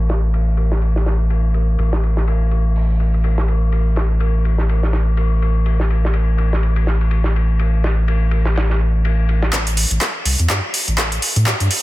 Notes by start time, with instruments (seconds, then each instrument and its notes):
Already playing: analog synth bass A1
0.09 snare, ride
0.34 ride
0.57 ride
0.72 snare
0.82 ride
0.96 snare
1.06 snare, ride
1.30 ride
1.54 ride
1.79 analog synth bass A1, ride
1.93 snare
2.03 ride
2.17 snare
2.27 ride
2.51 ride
2.76 open hi-hat
3.00 ride
3.14 ride
3.24 ride
3.38 snare
3.48 ride
3.72 ride
3.96 snare, ride
4.20 ride
4.45 ride
4.58 snare
4.69 ride
4.83 snare
4.93 snare, ride
5.17 ride
5.42 ride
5.66 ride
5.80 snare
5.90 ride
6.05 snare
6.13 ride
6.38 ride
6.53 snare
6.63 ride
6.76 ride
6.87 snare
7.01 ride
7.11 ride
7.24 snare
7.36 ride
7.59 ride
7.84 snare, ride
8.08 ride
8.31 ride
8.45 snare
8.56 snare, ride
8.70 snare
9.05 ride
9.29 ride
9.42 snare, ride
9.53 analog synth bass A1, kick, clap, closed hi-hat
9.67 closed hi-hat
9.77 open hi-hat
9.91 analog synth bass A1, closed hi-hat
10.01 kick, clap, closed hi-hat
10.25 analog synth bass C2, open hi-hat
10.39 analog synth bass E2, closed hi-hat
10.50 analog synth bass G2, kick, clap, closed hi-hat
10.74 open hi-hat
10.88 analog synth bass A1, closed hi-hat
10.98 kick, clap, closed hi-hat
11.12 closed hi-hat
11.22 open hi-hat
11.36 analog synth bass A2, closed hi-hat
11.46 kick, clap, closed hi-hat
11.60 analog synth bass G2, closed hi-hat
11.71 open hi-hat